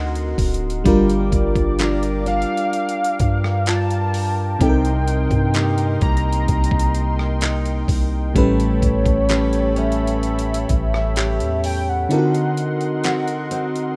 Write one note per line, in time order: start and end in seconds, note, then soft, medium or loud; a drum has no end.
0.00 0.35 D2 loud
0.00 0.81 D3 medium
0.00 0.86 D3 loud
0.00 0.81 C4 medium
0.00 0.95 C4 medium
0.00 0.82 D#4 medium
0.00 0.86 F#4 medium
0.00 0.95 F#4 medium
0.00 0.82 A#4 medium
0.00 0.83 A#4 medium
0.00 1.55 A#4 medium
0.00 0.82 D#5 medium
0.00 0.82 F#5 medium
0.00 0.82 C6 medium
0.15 closed hi-hat medium
0.38 0.83 D1 loud
0.38 kick loud
0.38 closed hi-hat medium
0.38 open hi-hat medium
0.54 closed hi-hat medium
0.70 closed hi-hat medium
0.84 1.31 G1 loud
0.84 4.56 G3 medium
0.84 4.61 G3 loud
0.84 4.56 D4 medium
0.84 4.57 F4 medium
0.84 8.31 A#4 medium
0.84 4.58 A#4 medium
0.84 4.57 F5 medium
0.84 12.06 G5 medium
0.84 4.57 D6 medium
0.84 kick loud
0.84 closed hi-hat medium
1.10 closed hi-hat medium
1.32 2.46 G1 loud
1.32 2.23 D5 loud
1.32 kick loud
1.32 closed hi-hat medium
1.56 kick medium
1.56 closed hi-hat soft
1.79 2.25 D4 medium
1.79 3.66 F4 medium
1.79 5.31 A#4 medium
1.79 clap loud
1.79 closed hi-hat medium
2.03 closed hi-hat medium
2.26 4.70 D4 medium
2.26 3.63 F5 loud
2.26 closed hi-hat soft
2.42 closed hi-hat soft
2.57 closed hi-hat medium
2.73 closed hi-hat medium
2.89 closed hi-hat medium
3.04 closed hi-hat medium
3.19 4.57 G2 loud
3.19 kick loud
3.19 closed hi-hat medium
3.44 cross-stick medium
3.66 4.70 F4 medium
3.66 4.57 A5 loud
3.66 clap loud
3.66 closed hi-hat medium
3.90 closed hi-hat medium
4.14 open hi-hat medium
4.59 5.28 C2 loud
4.59 8.31 C3 medium
4.59 8.36 C3 medium
4.59 8.31 C4 medium
4.59 8.32 D#4 medium
4.59 4.68 A4 medium
4.59 8.32 D#5 medium
4.59 5.98 G5 loud
4.59 8.32 C6 medium
4.59 kick loud
4.59 closed hi-hat medium
4.69 8.36 A#4 medium
4.85 closed hi-hat medium
5.08 closed hi-hat medium
5.31 5.98 G2 loud
5.31 kick medium
5.31 closed hi-hat soft
5.54 6.00 A#3 medium
5.54 7.41 D#4 medium
5.54 9.06 G4 medium
5.54 clap loud
5.54 closed hi-hat medium
5.78 closed hi-hat soft
6.01 6.47 C2 loud
6.01 8.35 A#3 medium
6.01 6.24 A#5 loud
6.01 kick loud
6.01 closed hi-hat soft
6.17 closed hi-hat medium
6.26 7.85 A#5 loud
6.33 closed hi-hat medium
6.48 7.85 C2 loud
6.48 kick medium
6.48 closed hi-hat medium
6.64 closed hi-hat medium
6.71 kick loud
6.79 closed hi-hat medium
6.95 closed hi-hat medium
7.19 cross-stick medium
7.41 8.45 D#4 medium
7.41 clap loud
7.41 closed hi-hat medium
7.66 closed hi-hat medium
7.88 8.34 C2 medium
7.88 kick loud
7.88 open hi-hat medium
8.34 8.81 A1 loud
8.34 12.06 A2 medium
8.34 12.06 G3 medium
8.34 12.11 A3 medium
8.34 12.07 C#4 medium
8.34 12.07 A4 medium
8.34 12.08 B4 medium
8.34 12.07 C#5 medium
8.34 12.07 B5 medium
8.34 kick loud
8.34 closed hi-hat medium
8.60 closed hi-hat soft
8.82 9.05 A1 loud
8.82 9.80 C#5 loud
8.82 kick loud
8.82 closed hi-hat medium
9.06 10.66 A1 loud
9.06 kick medium
9.06 closed hi-hat soft
9.29 9.75 C#4 medium
9.29 11.16 G4 medium
9.29 12.21 B4 medium
9.29 clap loud
9.29 closed hi-hat medium
9.53 closed hi-hat soft
9.76 12.20 C#4 medium
9.76 10.94 E5 loud
9.76 closed hi-hat soft
9.92 closed hi-hat medium
10.07 closed hi-hat medium
10.23 closed hi-hat medium
10.39 closed hi-hat medium
10.54 closed hi-hat medium
10.69 11.42 A1 loud
10.69 kick loud
10.69 closed hi-hat medium
10.94 11.61 E5 loud
10.94 cross-stick medium
11.16 12.20 G4 medium
11.16 clap loud
11.16 closed hi-hat medium
11.40 12.07 E2 loud
11.40 closed hi-hat medium
11.64 11.91 G5 loud
11.64 open hi-hat medium
11.89 13.96 F#5 loud
12.09 13.96 D3 medium
12.09 13.96 C4 medium
12.09 13.96 D#4 medium
12.09 12.18 F4 soft
12.09 13.96 A#4 medium
12.09 13.96 D#5 medium
12.09 13.96 F#5 medium
12.09 13.96 C6 medium
12.09 closed hi-hat medium
12.18 13.96 F#4 medium
12.34 closed hi-hat medium
12.57 closed hi-hat medium
12.81 closed hi-hat soft
13.04 13.50 C4 medium
13.04 13.96 F#4 medium
13.04 13.96 A#4 medium
13.04 clap loud
13.04 closed hi-hat medium
13.28 closed hi-hat medium
13.51 13.96 C4 medium
13.51 closed hi-hat medium
13.76 closed hi-hat medium